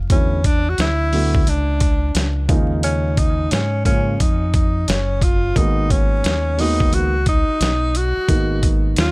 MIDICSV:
0, 0, Header, 1, 6, 480
1, 0, Start_track
1, 0, Tempo, 681818
1, 73, Time_signature, 4, 2, 24, 8
1, 6417, End_track
2, 0, Start_track
2, 0, Title_t, "Tenor saxophone"
2, 0, Program_c, 0, 66
2, 82, Note_on_c, 0, 61, 93
2, 327, Note_on_c, 0, 62, 92
2, 337, Note_off_c, 0, 61, 0
2, 487, Note_on_c, 0, 66, 93
2, 497, Note_off_c, 0, 62, 0
2, 562, Note_off_c, 0, 66, 0
2, 570, Note_on_c, 0, 64, 108
2, 1050, Note_on_c, 0, 62, 82
2, 1060, Note_off_c, 0, 64, 0
2, 1761, Note_off_c, 0, 62, 0
2, 1997, Note_on_c, 0, 61, 98
2, 2238, Note_on_c, 0, 63, 96
2, 2249, Note_off_c, 0, 61, 0
2, 2477, Note_on_c, 0, 61, 93
2, 2488, Note_off_c, 0, 63, 0
2, 2712, Note_off_c, 0, 61, 0
2, 2716, Note_on_c, 0, 61, 96
2, 2961, Note_on_c, 0, 63, 80
2, 2972, Note_off_c, 0, 61, 0
2, 3197, Note_off_c, 0, 63, 0
2, 3200, Note_on_c, 0, 63, 78
2, 3440, Note_on_c, 0, 61, 87
2, 3450, Note_off_c, 0, 63, 0
2, 3684, Note_on_c, 0, 65, 90
2, 3694, Note_off_c, 0, 61, 0
2, 3922, Note_on_c, 0, 63, 99
2, 3933, Note_off_c, 0, 65, 0
2, 4160, Note_on_c, 0, 61, 92
2, 4171, Note_off_c, 0, 63, 0
2, 4647, Note_on_c, 0, 63, 101
2, 4658, Note_off_c, 0, 61, 0
2, 4887, Note_on_c, 0, 66, 95
2, 4898, Note_off_c, 0, 63, 0
2, 5120, Note_off_c, 0, 66, 0
2, 5129, Note_on_c, 0, 63, 97
2, 5608, Note_on_c, 0, 66, 101
2, 5619, Note_off_c, 0, 63, 0
2, 6145, Note_off_c, 0, 66, 0
2, 6329, Note_on_c, 0, 65, 107
2, 6417, Note_off_c, 0, 65, 0
2, 6417, End_track
3, 0, Start_track
3, 0, Title_t, "Grand piano"
3, 0, Program_c, 1, 0
3, 69, Note_on_c, 1, 50, 51
3, 71, Note_on_c, 1, 54, 49
3, 75, Note_on_c, 1, 57, 49
3, 76, Note_on_c, 1, 59, 55
3, 79, Note_on_c, 1, 64, 66
3, 260, Note_off_c, 1, 50, 0
3, 261, Note_off_c, 1, 54, 0
3, 263, Note_off_c, 1, 57, 0
3, 264, Note_off_c, 1, 59, 0
3, 265, Note_off_c, 1, 64, 0
3, 792, Note_on_c, 1, 50, 71
3, 792, Note_on_c, 1, 54, 68
3, 796, Note_on_c, 1, 57, 58
3, 797, Note_on_c, 1, 59, 56
3, 800, Note_on_c, 1, 66, 77
3, 981, Note_off_c, 1, 50, 0
3, 981, Note_off_c, 1, 54, 0
3, 983, Note_off_c, 1, 57, 0
3, 984, Note_off_c, 1, 59, 0
3, 986, Note_off_c, 1, 66, 0
3, 1748, Note_on_c, 1, 49, 87
3, 1751, Note_on_c, 1, 53, 74
3, 1753, Note_on_c, 1, 56, 69
3, 1756, Note_on_c, 1, 58, 74
3, 1757, Note_on_c, 1, 63, 89
3, 2532, Note_off_c, 1, 49, 0
3, 2534, Note_off_c, 1, 53, 0
3, 2535, Note_off_c, 1, 56, 0
3, 2536, Note_off_c, 1, 58, 0
3, 2537, Note_off_c, 1, 63, 0
3, 2711, Note_on_c, 1, 49, 75
3, 2712, Note_on_c, 1, 53, 69
3, 2714, Note_on_c, 1, 56, 68
3, 2716, Note_on_c, 1, 58, 67
3, 2719, Note_on_c, 1, 61, 82
3, 2901, Note_off_c, 1, 49, 0
3, 2901, Note_off_c, 1, 53, 0
3, 2902, Note_off_c, 1, 56, 0
3, 2903, Note_off_c, 1, 58, 0
3, 2905, Note_off_c, 1, 61, 0
3, 3911, Note_on_c, 1, 51, 67
3, 3913, Note_on_c, 1, 56, 64
3, 3918, Note_on_c, 1, 58, 63
3, 3920, Note_on_c, 1, 59, 60
3, 3922, Note_on_c, 1, 66, 72
3, 4598, Note_off_c, 1, 51, 0
3, 4599, Note_off_c, 1, 56, 0
3, 4601, Note_off_c, 1, 58, 0
3, 4602, Note_off_c, 1, 59, 0
3, 4603, Note_off_c, 1, 66, 0
3, 4631, Note_on_c, 1, 51, 79
3, 4635, Note_on_c, 1, 56, 65
3, 4637, Note_on_c, 1, 58, 61
3, 4641, Note_on_c, 1, 59, 72
3, 4641, Note_on_c, 1, 66, 74
3, 4996, Note_off_c, 1, 51, 0
3, 4998, Note_off_c, 1, 56, 0
3, 4999, Note_off_c, 1, 58, 0
3, 5001, Note_off_c, 1, 59, 0
3, 5001, Note_off_c, 1, 66, 0
3, 5828, Note_on_c, 1, 51, 65
3, 5831, Note_on_c, 1, 56, 54
3, 5833, Note_on_c, 1, 58, 58
3, 5835, Note_on_c, 1, 59, 56
3, 5839, Note_on_c, 1, 63, 73
3, 6417, Note_off_c, 1, 51, 0
3, 6417, Note_off_c, 1, 56, 0
3, 6417, Note_off_c, 1, 58, 0
3, 6417, Note_off_c, 1, 59, 0
3, 6417, Note_off_c, 1, 63, 0
3, 6417, End_track
4, 0, Start_track
4, 0, Title_t, "Fingered electric bass"
4, 0, Program_c, 2, 33
4, 71, Note_on_c, 2, 40, 90
4, 528, Note_off_c, 2, 40, 0
4, 550, Note_on_c, 2, 38, 78
4, 1007, Note_off_c, 2, 38, 0
4, 1034, Note_on_c, 2, 37, 99
4, 1489, Note_off_c, 2, 37, 0
4, 1511, Note_on_c, 2, 37, 82
4, 1740, Note_off_c, 2, 37, 0
4, 1754, Note_on_c, 2, 39, 99
4, 2445, Note_off_c, 2, 39, 0
4, 2474, Note_on_c, 2, 44, 89
4, 2929, Note_off_c, 2, 44, 0
4, 2957, Note_on_c, 2, 41, 97
4, 3411, Note_off_c, 2, 41, 0
4, 3436, Note_on_c, 2, 30, 81
4, 3890, Note_off_c, 2, 30, 0
4, 3916, Note_on_c, 2, 32, 102
4, 4370, Note_off_c, 2, 32, 0
4, 4396, Note_on_c, 2, 39, 91
4, 4850, Note_off_c, 2, 39, 0
4, 4873, Note_on_c, 2, 37, 90
4, 5248, Note_off_c, 2, 37, 0
4, 5353, Note_on_c, 2, 35, 88
4, 5728, Note_off_c, 2, 35, 0
4, 5833, Note_on_c, 2, 32, 93
4, 6289, Note_off_c, 2, 32, 0
4, 6316, Note_on_c, 2, 39, 96
4, 6417, Note_off_c, 2, 39, 0
4, 6417, End_track
5, 0, Start_track
5, 0, Title_t, "Muted fingered electric bass strokes"
5, 5269, Note_on_c, 9, 29, 45
5, 5340, Note_off_c, 9, 29, 0
5, 6417, End_track
6, 0, Start_track
6, 0, Title_t, "Drums"
6, 70, Note_on_c, 9, 36, 109
6, 70, Note_on_c, 9, 42, 89
6, 140, Note_off_c, 9, 42, 0
6, 141, Note_off_c, 9, 36, 0
6, 312, Note_on_c, 9, 42, 66
6, 313, Note_on_c, 9, 36, 84
6, 382, Note_off_c, 9, 42, 0
6, 383, Note_off_c, 9, 36, 0
6, 549, Note_on_c, 9, 42, 72
6, 563, Note_on_c, 9, 38, 106
6, 620, Note_off_c, 9, 42, 0
6, 634, Note_off_c, 9, 38, 0
6, 793, Note_on_c, 9, 46, 50
6, 863, Note_off_c, 9, 46, 0
6, 947, Note_on_c, 9, 36, 99
6, 1018, Note_off_c, 9, 36, 0
6, 1035, Note_on_c, 9, 42, 92
6, 1105, Note_off_c, 9, 42, 0
6, 1270, Note_on_c, 9, 42, 70
6, 1273, Note_on_c, 9, 36, 96
6, 1341, Note_off_c, 9, 42, 0
6, 1343, Note_off_c, 9, 36, 0
6, 1512, Note_on_c, 9, 42, 93
6, 1525, Note_on_c, 9, 38, 92
6, 1583, Note_off_c, 9, 42, 0
6, 1595, Note_off_c, 9, 38, 0
6, 1752, Note_on_c, 9, 42, 72
6, 1753, Note_on_c, 9, 36, 105
6, 1823, Note_off_c, 9, 36, 0
6, 1823, Note_off_c, 9, 42, 0
6, 1993, Note_on_c, 9, 42, 87
6, 2063, Note_off_c, 9, 42, 0
6, 2234, Note_on_c, 9, 42, 75
6, 2235, Note_on_c, 9, 36, 82
6, 2304, Note_off_c, 9, 42, 0
6, 2305, Note_off_c, 9, 36, 0
6, 2472, Note_on_c, 9, 42, 75
6, 2486, Note_on_c, 9, 38, 93
6, 2543, Note_off_c, 9, 42, 0
6, 2557, Note_off_c, 9, 38, 0
6, 2713, Note_on_c, 9, 36, 79
6, 2715, Note_on_c, 9, 42, 75
6, 2783, Note_off_c, 9, 36, 0
6, 2785, Note_off_c, 9, 42, 0
6, 2958, Note_on_c, 9, 36, 83
6, 2958, Note_on_c, 9, 42, 95
6, 3028, Note_off_c, 9, 36, 0
6, 3028, Note_off_c, 9, 42, 0
6, 3193, Note_on_c, 9, 42, 60
6, 3195, Note_on_c, 9, 36, 90
6, 3264, Note_off_c, 9, 42, 0
6, 3265, Note_off_c, 9, 36, 0
6, 3435, Note_on_c, 9, 42, 96
6, 3447, Note_on_c, 9, 38, 91
6, 3505, Note_off_c, 9, 42, 0
6, 3518, Note_off_c, 9, 38, 0
6, 3671, Note_on_c, 9, 36, 89
6, 3675, Note_on_c, 9, 42, 75
6, 3742, Note_off_c, 9, 36, 0
6, 3745, Note_off_c, 9, 42, 0
6, 3914, Note_on_c, 9, 36, 108
6, 3917, Note_on_c, 9, 42, 89
6, 3985, Note_off_c, 9, 36, 0
6, 3987, Note_off_c, 9, 42, 0
6, 4156, Note_on_c, 9, 36, 91
6, 4157, Note_on_c, 9, 42, 69
6, 4227, Note_off_c, 9, 36, 0
6, 4227, Note_off_c, 9, 42, 0
6, 4394, Note_on_c, 9, 42, 75
6, 4408, Note_on_c, 9, 38, 112
6, 4464, Note_off_c, 9, 42, 0
6, 4479, Note_off_c, 9, 38, 0
6, 4636, Note_on_c, 9, 46, 53
6, 4707, Note_off_c, 9, 46, 0
6, 4789, Note_on_c, 9, 36, 98
6, 4860, Note_off_c, 9, 36, 0
6, 4876, Note_on_c, 9, 42, 95
6, 4947, Note_off_c, 9, 42, 0
6, 5112, Note_on_c, 9, 42, 66
6, 5114, Note_on_c, 9, 36, 88
6, 5182, Note_off_c, 9, 42, 0
6, 5185, Note_off_c, 9, 36, 0
6, 5356, Note_on_c, 9, 42, 102
6, 5368, Note_on_c, 9, 38, 97
6, 5426, Note_off_c, 9, 42, 0
6, 5439, Note_off_c, 9, 38, 0
6, 5595, Note_on_c, 9, 42, 72
6, 5665, Note_off_c, 9, 42, 0
6, 5833, Note_on_c, 9, 36, 113
6, 5833, Note_on_c, 9, 42, 94
6, 5903, Note_off_c, 9, 36, 0
6, 5904, Note_off_c, 9, 42, 0
6, 6074, Note_on_c, 9, 36, 87
6, 6074, Note_on_c, 9, 42, 82
6, 6145, Note_off_c, 9, 36, 0
6, 6145, Note_off_c, 9, 42, 0
6, 6311, Note_on_c, 9, 42, 74
6, 6325, Note_on_c, 9, 38, 101
6, 6381, Note_off_c, 9, 42, 0
6, 6396, Note_off_c, 9, 38, 0
6, 6417, End_track
0, 0, End_of_file